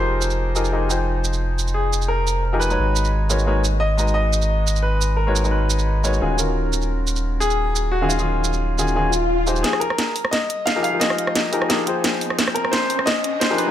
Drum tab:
HH |----------------|----------------|----------------|----------------|
SH |--xx--xx--x---xx|--xx--xx--x---xx|--xx--xx--x---xx|--xx--xx--x---xx|
SD |----------------|----------------|----------------|----------------|

HH |----------------|----------------|----------------|x-x-x-o-x-x-x-o-|
SH |--xx--xx--x---xx|--xx--xx--x---xx|--xx--xx--x---xx|----------------|
SD |----------------|----------------|----------------|or-ro--ro---o---|

HH |x-x-x-o-x-x-x-o-|x-x-x-o-x-x-x-o-|
SH |----------------|----------------|
SD |or-ro--ro---o--r|or-ro--ro---o---|